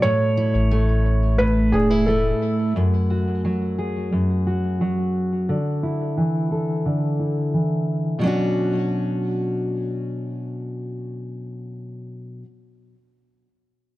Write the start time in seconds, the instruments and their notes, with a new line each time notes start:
Already playing: steel-string acoustic guitar C#4
0.02 steel-string acoustic guitar A2, felt piano C#5
0.37 steel-string acoustic guitar E4
0.54 sub bass A1
0.71 steel-string acoustic guitar A3
1.38 steel-string acoustic guitar A2, felt piano B4
1.72 sub bass E1, steel-string acoustic guitar D4, felt piano G#4
1.90 steel-string acoustic guitar E4
2.06 steel-string acoustic guitar A3, felt piano A4
2.76 steel-string acoustic guitar F#2
3.10 steel-string acoustic guitar F#4
3.45 steel-string acoustic guitar F#3
3.78 steel-string acoustic guitar G#4
4.12 steel-string acoustic guitar F#2
4.47 steel-string acoustic guitar F#4
4.81 steel-string acoustic guitar F#3
5.49 steel-string acoustic guitar D3
5.83 steel-string acoustic guitar E4
6.17 steel-string acoustic guitar E3
6.51 steel-string acoustic guitar A4
6.86 steel-string acoustic guitar D3
7.20 steel-string acoustic guitar E4
7.54 steel-string acoustic guitar E3
8.19 steel-string acoustic guitar B2 F#3
8.23 steel-string acoustic guitar C#4 D4 F#4